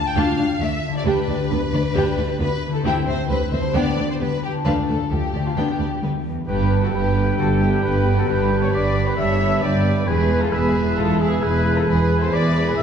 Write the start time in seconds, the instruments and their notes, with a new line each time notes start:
Already playing: harp D3 D4 F4 D5
0.07 violin section G5
0.15 double bass section D2, cello section D2, viola section D4 F4, violin section F5 A5
0.38 double bass section D2, cello section D2, viola section D4, violin section F5
0.60 double bass section D2, cello section D2, viola section A3 D4, violin section D5 E5
0.88 harp D3
0.92 harp D4
0.97 harp G4, violin section D5
1.01 double bass section D2, cello section D2, viola section D4 G4, harp D5
1.07 violin section B4 G5
1.27 double bass section D2, cello section D2, viola section D4, violin section D5
1.50 double bass section D2, cello section D2, viola section B3 D4, violin section B4
1.73 cello section D2, double bass section D2, viola section D4, violin section D5
1.94 cello section D2, double bass section D2, viola section D4 G4, violin section G5
2.17 double bass section D2, cello section D2, viola section D4, violin section D5
2.39 double bass section D2, cello section D2, viola section B3 D4, violin section B4
2.68 harp D3
2.72 harp E4, violin section A4
2.76 harp G4
2.81 double bass section D2, viola section C4 E4, violin section G4, harp C5
2.85 cello section D2, violin section G5
3.07 cello section D2, double bass section D2, viola section C4, violin section C5 E5
3.29 double bass section D2, cello section D2, viola section G3 C4, violin section B4 C5
3.53 double bass section D2, cello section D2, viola section C4, violin section C5 E5
3.57 harp D3
3.62 harp D4
3.66 harp G4
3.71 viola section D4, harp B4, violin section G5
3.75 cello section D2, double bass section D2, viola section B3, violin section D5
3.97 cello section D2, double bass section D2, viola section B3, violin section D5
4.10 violin section C5
4.19 cello section D2, double bass section D2, viola section G3 B3, violin section B4
4.44 harp D3, violin section G4
4.52 harp D4
4.57 harp F4
4.62 double bass section D2, viola section A3 D4, harp A4, violin section F5
4.66 cello section D2, violin section B4
4.88 double bass section D2, cello section D2, viola section A3, violin section A4 D5
5.11 double bass section D2, cello section D2, viola section F3 A3, violin section G4 A4
5.34 double bass section D2, cello section D2, viola section A3, violin section D5
5.39 harp D3
5.44 harp D4, violin section F4
5.48 harp G4
5.52 double bass section D2, harp B4
5.56 cello section D2, viola section B3 D4, violin section G4 G5
5.79 cello section D2, double bass section D2, viola section B3, violin section D5
6.02 cello section D2, double bass section D2, viola section G3 B3, violin section B4
6.25 cello section E2
6.47 double bass section G1, cello section G2, harp G2, french horn section D3 G4, viola section D4 G4, violin section G4 B4, trumpet section B4, oboe G5, flute B5
6.64 harp D4
6.71 viola section B3 B4
6.78 violin section F#4 A4, harp B4
6.83 trumpet section A4, flute A5
6.92 double bass section G1, cello section G2, viola section D4 G4, violin section G4 B4, trumpet section B4, flute B5
7.15 viola section B3 B4
7.24 harp G4
7.38 double bass section G1, cello section G2, harp D3, viola section D4 G4, violin section F#4 A4, trumpet section A4, flute A5
7.54 harp D4
7.60 viola section B3 B4, violin section E4 G4, trumpet section G4, flute G5
7.69 harp B4
7.82 double bass section G1, cello section G2, viola section D4 G4, violin section G4 B4, trumpet section B4, flute B5
8.05 viola section B3 B4
8.14 violin section F#4 A4, harp G4, flute A5
8.18 trumpet section A4
8.27 double bass section G1, cello section G2, harp G2, viola section D4 G4, violin section G4 B4, trumpet section B4, flute B5
8.43 harp D4
8.50 viola section B3 B4
8.58 violin section A4, harp B4, flute C#6
8.62 violin section C#5, trumpet section C#5
8.72 double bass section G1, cello section G2, viola section D4 G4, violin section B4 D5, trumpet section D5, oboe B5, flute D6
8.95 viola section B3 B4
9.02 harp G4, violin section G4, flute B5
9.07 violin section B4, trumpet section B4
9.16 double bass section G1, cello section G2, harp D3, viola section D4 G4, violin section C#5 E5, trumpet section E5, flute E6
9.33 harp D4
9.39 viola section B3 B4
9.48 harp B4
9.61 double bass section G1, cello section G2, viola section D4 G4, violin section B4 D5, harp D5, trumpet section D5, oboe G5, flute D6
9.77 harp B4
9.85 viola section B3 B4
9.93 harp G4
10.06 double bass section E1, cello section E2, harp E2, french horn section E3 G#4, viola section G#3 G#4, violin section G#4 B4, trumpet section B4, oboe G#5, flute B5
10.22 harp E4
10.31 viola section B3 B4
10.37 harp E5, flute A5
10.41 violin section F4 A4, trumpet section A4
10.52 double bass section E1, cello section E2, viola section G#3 G#4, harp G#4, violin section G#4 B4, trumpet section B4, oboe E5, flute B5
10.67 harp E5
10.75 viola section B3 B4
10.82 harp G#4
10.96 double bass section E1, cello section E2, harp B2, viola section G#3 G#4, violin section F4 A4, trumpet section A4, flute A5
11.12 harp E4
11.19 viola section B3 B4, violin section E4 G#4, trumpet section G#4, flute G#5
11.28 harp E5
11.41 double bass section E1, cello section E2, viola section G#3 G#4, violin section G#4 B4, harp G#4, trumpet section B4, oboe G#5, flute B5
11.58 harp E5
11.64 viola section B3 B4
11.73 violin section F4, harp G#4, flute A5
11.77 violin section A4, trumpet section A4
11.86 double bass section E1, harp E2, cello section E2, viola section G#3 G#4, violin section G#4 B4, trumpet section B4, flute B5
12.03 harp E4
12.09 viola section B3 B4
12.18 violin section A4, trumpet section C5, harp E5, flute C6
12.23 violin section C5
12.31 double bass section E1, cello section E2, viola section G#3 G#4, harp G#4, violin section B4 D5, trumpet section D5, oboe B5, flute D6
12.48 harp E5
12.55 viola section B3 B4
12.63 harp G#4, violin section G#4, flute B5
12.67 trumpet section B4, violin section B4
12.77 double bass section E1, cello section E2, harp B2, viola section G#3 G#4, violin section B4 E5, trumpet section E5, flute E6